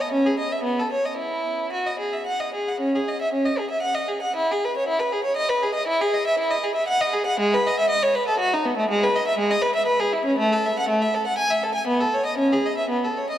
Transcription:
0.01 D#5
0.12 C#4
0.26 G#4
0.39 D#5
0.52 E5
0.63 B3
0.79 A4
0.92 C#5
1.05 D#5
1.18 E4
1.72 F#4
1.86 D#5
1.99 G#4
2.13 E5
2.26 F#5
2.40 D#5
2.54 G#4
2.68 F#5
2.80 C#4
2.95 G#4
3.08 D#5
3.22 E5
3.33 C#4
3.45 D#5
3.58 G#4
3.70 E5
3.82 F#5
3.95 D#5
4.08 G#4
4.22 F#5
4.36 E4
4.51 G#4
4.65 B4
4.77 C#5
4.88 E4
4.99 B4
5.12 G#4
5.24 C#5
5.37 D#5
5.49 B4
5.62 G#4
5.74 D#5
5.87 E4
6.01 G#4
6.14 D#5
6.27 E5
6.39 E4
6.51 D#5
6.63 G#4
6.75 E5
6.88 F#5
7.01 D#5
7.13 G#4
7.26 F#5
7.40 G#3
7.54 B4
7.67 D#5
7.79 E5
7.90 D#5
8.03 C#5
8.15 B4
8.28 A4
8.39 F#4
8.53 D#4
8.65 B3
8.77 A3
8.89 G#3
9.03 B4
9.16 D#5
9.27 E5
9.39 G#3
9.51 D#5
9.62 B4
9.75 E5
9.86 B4
10.00 G#4
10.13 E4
10.25 C#4
10.38 A3
10.53 A4
10.66 E5
10.79 F#5
10.89 A3
11.02 E5
11.14 A4
11.27 F#5
11.38 G#5
11.50 E5
11.63 A4
11.74 G#5
11.87 B3
12.01 A4
12.14 C#5
12.26 D#5
12.38 C#4
12.52 G#4
12.66 D#5
12.78 E5
12.89 B3
13.04 A4
13.17 C#5
13.30 D#5

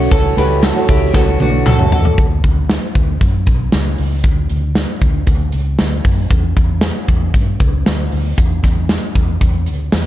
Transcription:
Already playing: A3 C#4 F#4
0.10 C#2 E3 A3 C#4 F#4 A4, kick, ride
0.36 C#2 E3 A3 C#4 F#4 G4 B4, snare, ride
0.63 F#4 A4, snare, clap, ride
0.75 C#3 E3 A3 C#4 F#4
0.88 C#2 E4 G4, kick, ride
1.13 C#2 E3 A3 C#4 F#4 A4, kick, snare, clap
1.38 B1 E3 A3 C#4 D4 F#4, high tom
1.66 C#2 F#4 A4, clap, mid tom
1.76 C#4 F#4, mid tom
1.80 A3
1.92 E2 F#4 A4, floor tom
2.05 floor tom
2.18 D2, kick, closed hi-hat
2.44 D2, kick, closed hi-hat
2.69 snare, closed hi-hat
2.95 D2, kick, closed hi-hat
3.21 F#2, kick, closed hi-hat
3.46 B1, kick, closed hi-hat
3.72 C#2, snare, closed hi-hat
3.98 C#2, open hi-hat
4.23 D2, kick, closed hi-hat
4.50 D2, closed hi-hat
4.75 snare, closed hi-hat
5.01 D2, kick, closed hi-hat
5.27 D2, kick, closed hi-hat
5.52 C#2, closed hi-hat
5.79 D2, snare, closed hi-hat
6.04 F#2, kick, open hi-hat
6.30 E2, kick, closed hi-hat
6.57 E2, kick, closed hi-hat
6.81 snare, closed hi-hat
7.08 E2, kick, closed hi-hat
7.34 G2, kick, closed hi-hat
7.60 C#2, kick, closed hi-hat
7.86 D2, snare, closed hi-hat
8.12 D2, open hi-hat
8.38 E2, kick, closed hi-hat
8.63 E2, kick, snare, closed hi-hat
8.89 snare, closed hi-hat
9.15 E2, kick, closed hi-hat
9.41 E2, kick, closed hi-hat
9.66 D2, closed hi-hat
9.92 E2, snare, closed hi-hat

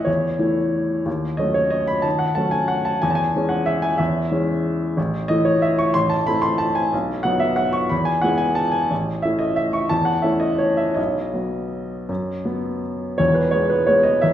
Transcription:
Already playing: A3 E5
0.05 E2 C#5
0.39 E3 A3 E4
1.06 D#2
1.37 F#3 A3 C#4 D#5
1.54 C#5
1.70 D#5
1.87 B5
2.02 D#3 A5
2.19 F#5
2.35 F#3 A3 C#4 A5
2.51 G#5
2.68 F#5
2.85 A5
3.02 E2 G#5
3.10 A5
3.15 G#5
3.36 E3 G#3 C#4
3.49 F#5
3.66 E5
3.82 G#5
3.98 E2 E5
4.32 E3 G#3 C#4
4.97 A1
5.28 E3 A3 E4 D#5
5.45 C#5
5.62 E5
5.79 C#6
5.94 A1 C6
6.10 A5
6.27 A3 C4 E4 B5
6.42 C6
6.58 A5
6.75 G#5
6.93 B1
7.23 F#3 B3 D#4 F#5
7.40 E5
7.56 F#5
7.73 C#6
7.89 E2 B5
8.05 G#5
8.22 G#3 B3 E4 F#5
8.38 G#5
8.55 A5
8.72 G#5
8.91 A1
9.22 A3 C#4 E4 E5
9.39 D#5
9.56 E5
9.73 C#6
9.89 E2 A5
10.05 F#5
10.22 A3 C#4 E4 E5
10.40 D#5
10.58 C#5
10.77 E5
10.94 B1 D#5
11.34 F#3 B3
12.09 F#2
12.45 F#3 B3
13.18 E1 E2 C#5
13.34 B4
13.51 G#3 B3 C#5
13.70 B4
13.87 G#3 B3 C#5
14.03 D#5
14.22 E1 E2 E5

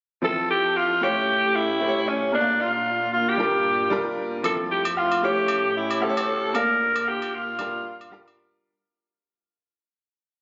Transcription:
0.22 F2 F3 C4 E4 A4
0.50 G4
0.77 F4
1.01 A2 A3 C#4 E4 G4 C#5
1.56 E4
1.80 A3 E4 G4 C5
1.88 C#5
2.08 C#4
2.32 A#2 A#3 D4 F4 A#4 D5 E5
2.41 F5
2.61 F4
3.13 F4
3.29 G4
3.37 G2 G3 D4 F4 A#4
3.90 G3 D4 F4 A#4
4.43 F2 F3 A3 C4 E4 A4, high agogo
4.71 G4
4.85 high agogo
4.97 F4, low woodblock
5.12 high agogo
5.22 A2 A3 C#4 E4 G4 C#5
5.48 high agogo
5.77 E4
5.91 high agogo
6.01 A3 E4 G4 A4 C5, low woodblock
6.09 C#5
6.17 high agogo
6.53 A#2 A#3 D4 F4 A#4 D5 F5, high agogo
6.96 high agogo
7.07 G4, low woodblock
7.22 high agogo
7.35 F4
7.58 G2 G3 D4 F4 A#4, high agogo
8.01 high agogo
8.11 G3 D4 F4 A#4, low woodblock
8.28 high agogo

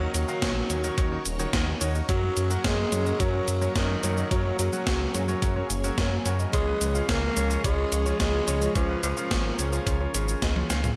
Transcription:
Already playing: F#3 A#3 C#4 D#4 F#4 C#5
0.01 D#3 D#4 F#4 A#4 C#5
0.14 D#2 F#3, closed hi-hat, shaker
0.28 D#3 D#4 F#4 A#4 F5, shaker
0.42 A#1 D#3 D#4 F#4 A#4 C#5, kick, snare, closed hi-hat, shaker
0.70 D#2 D#3 D#4 F#4 A#4 C#5, closed hi-hat, shaker
0.84 D#3 D#4 F#4 A#4 C#5, shaker
0.98 D#2 D#3 D#4 F#4 A#4 C#5, kick, closed hi-hat, shaker
1.12 D#3 D#4 F#4 A#4 C#5
1.25 D#1, closed hi-hat, shaker
1.39 D#3 D#4 F#4 A#4 C#5, shaker
1.53 D#2 D#3 D#4 F#4 A#4 C#5, kick, snare, closed hi-hat, shaker
1.81 D#2 D#4 F#4 A#4 C#5, closed hi-hat, shaker
1.95 D#4 F#4 A#4 D#5, shaker
2.09 F#2 F#3 A#3 C#4 F#4 A#4 C#5, kick, closed hi-hat, shaker
2.23 F#3 C#4 F#4 A#4 C#5
2.37 F#2, closed hi-hat, shaker
2.50 F#3 C#4 F#4 A#4 F#5, shaker
2.64 F#2 F#3 G#3 C#4 F#4 A#4 C#5, kick, snare, closed hi-hat, shaker
2.92 F#2 F#3 C#4 F#4 A#4 C#5, closed hi-hat, shaker
3.06 F#3 C#4 F#4 A#4 C#5, shaker
3.20 F#2 F#3 C#4 F#4 A#4 C#5, kick, closed hi-hat, shaker
3.34 F#3 C#4 F#4 A#4 C#5
3.48 F#2, closed hi-hat, shaker
3.62 F#3 C#4 F#4 A#4 C#5, shaker
3.76 F#2 D#3 F#3 C#4 F#4 A#4 C#5, kick, snare, closed hi-hat, shaker
4.03 F#2 F#3 C#4 F#4 A#4 C#5, closed hi-hat, shaker
4.17 F#3 C#4 F#4 A#4 D#5, shaker
4.31 F#2 F#3 C#4 F#4 G#4 A#4 C#5, kick, closed hi-hat, shaker
4.45 F#3 C#4 F#4 A#4 C#5
4.59 F#2 F#3, closed hi-hat, shaker
4.73 F#3 C#4 F#4 A#4 F#5, shaker
4.87 C#2 F#3 C#4 F#4 A#4 C#5, kick, snare, closed hi-hat, shaker
5.14 F#2 F#3 C#4 F#4 A#4 C#5, closed hi-hat, shaker
5.28 F#3 C#4 F#4 A#4 C#5, shaker
5.42 F#2 F#3 C#4 F#4 A#4 C#5, kick, closed hi-hat, shaker
5.56 F#3 C#4 F#4 A#4 C#5
5.70 F#1, closed hi-hat, shaker
5.84 F#3 C#4 F#4 A#4 C#5, shaker
5.98 F#2 F#3 C#4 F#4 A#4 C#5, kick, snare, closed hi-hat, shaker
6.26 F#2 C#3 C#4 F#4 A#4 C#5, closed hi-hat, shaker
6.39 C#3 C#4 F#4 A#4 D#5, shaker
6.53 C#2 C#3 F3 G#3 C#4 F4 G#4 C#5, kick, closed hi-hat, shaker
6.67 C#3 C#4 F4 G#4 B4
6.81 C#2, closed hi-hat, shaker
6.95 C#3 C#4 F4 G#4 F5, shaker
7.09 C#2 C#3 A#3 C#4 F4 G#4 C#5, kick, snare, closed hi-hat, shaker
7.37 C#2 C#3 C#4 F4 G#4 C#5, closed hi-hat, shaker
7.50 C#3 C#4 F4 G#4 C#5, shaker
7.64 C#2 C#3 G#3 C#4 F4 G#4 C#5, kick, closed hi-hat, shaker
7.78 C#3 C#4 F4 G#4 C#5
7.92 C#2, closed hi-hat, shaker
8.06 C#3 C#4 F4 G#4 C#5, shaker
8.20 C#2 C#3 G#3 C#4 F4 G#4 C#5, kick, snare, closed hi-hat, shaker
8.48 C#2 C#3 C#4 F4 G#4 C#5, closed hi-hat, shaker
8.61 C#3 C#4 F4 G#4 D#5, shaker
8.75 C#2 C#3 F3 C#4 F4 G#4 A#4 C#5, kick, closed hi-hat, shaker
8.89 C#3 C#4 F4 G#4 B4
9.03 C#2 F3, closed hi-hat, shaker
9.17 C#3 C#4 F4 G#4 F5, shaker
9.31 G#1 C#3 C#4 F4 G#4 C#5, kick, snare, closed hi-hat, shaker
9.59 C#2 C#3 C#4 F4 G#4 C#5, closed hi-hat, shaker
9.73 C#3 C#4 F4 G#4 C#5, shaker
9.86 C#2 C#3 C#4 F4 G#4 C#5, kick, closed hi-hat, shaker
10.00 C#3 C#4 F4 G#4 C#5
10.14 G#1 C#3 C#4 F4 G#4 C#5, closed hi-hat, shaker
10.28 shaker
10.42 C#2 C#3 C#4 F4 G#4 D#5, kick, snare, closed hi-hat, shaker
10.56 C#3 C#4 F4 G#4 C#5, high tom
10.70 C#2 D#3 C#4 F4 G#4 F5, snare, closed hi-hat, shaker
10.84 mid tom, shaker

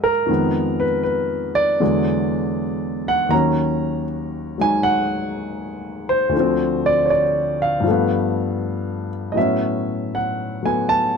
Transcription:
Already playing: G#2 F#3 G#3 A#3 B3 D#5 E5
0.04 A#4
0.26 F2 D#3 G#3
0.31 B3
0.80 B4
1.03 B4
1.55 D5
1.80 E2 D3 F#3 G#3
3.08 F#5
3.29 D#2 D#3 F#3 A#5
3.34 C#4
4.58 F#3 G#3 D#4 G#5
4.83 F#5
6.09 C5
6.29 D2 D3
6.36 F3 C4
6.86 D5
7.06 C#5
7.10 D5
7.62 F5
7.80 G2 F3
7.87 A3 B3
9.32 A2 F#3 D#5
9.37 B3 C#4 E5
10.15 F#5
10.63 F#3 A3 B3 G#5
10.89 A5

